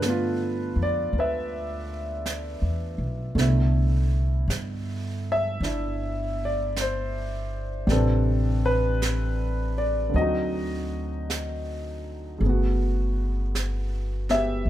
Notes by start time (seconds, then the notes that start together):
Already playing: G2 F4 A4 B4
0.00 D3 A3, brush sweep, snare, hi-hat pedal
0.06 B3 F4
0.76 F2
0.83 D5
1.13 D2, brush sweep
1.19 B4 E5
2.26 brush sweep, snare, hi-hat pedal
2.62 E2
2.98 B1
3.35 C2 B2 D3 A3, brush sweep, snare
3.40 E4
4.48 G2, brush sweep, snare, hi-hat pedal
5.32 E5
5.60 G1 D4, brush sweep, snare
5.65 E4
6.45 D5
6.76 brush sweep, snare, hi-hat pedal
6.81 C5
7.87 A1 C3 G3 B4, brush sweep, snare
7.92 C4 D4 A4
8.66 B4
9.02 brush sweep, snare, hi-hat pedal
9.78 D5
10.09 D3
10.14 D2 F#3 C4 F#4 D#5, brush sweep
10.21 D#4
11.30 brush sweep, snare, hi-hat pedal
12.38 G1 C#3 A3
12.43 B3, brush sweep
12.49 F#4
13.55 brush sweep, snare, hi-hat pedal
14.29 B3 E5, snare
14.34 G4
14.65 D2, brush sweep